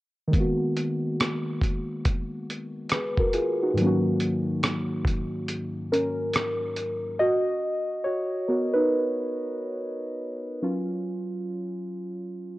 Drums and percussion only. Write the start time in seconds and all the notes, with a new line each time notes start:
0.33 kick, closed hi-hat
0.77 closed hi-hat
1.20 cross-stick, closed hi-hat
1.62 kick, closed hi-hat
2.05 kick, closed hi-hat
2.50 closed hi-hat
2.89 cross-stick, closed hi-hat
3.17 kick
3.33 closed hi-hat
3.77 closed hi-hat
4.20 closed hi-hat
4.63 cross-stick, closed hi-hat
5.05 kick, closed hi-hat
5.48 closed hi-hat
5.93 closed hi-hat
6.33 cross-stick, closed hi-hat
6.76 closed hi-hat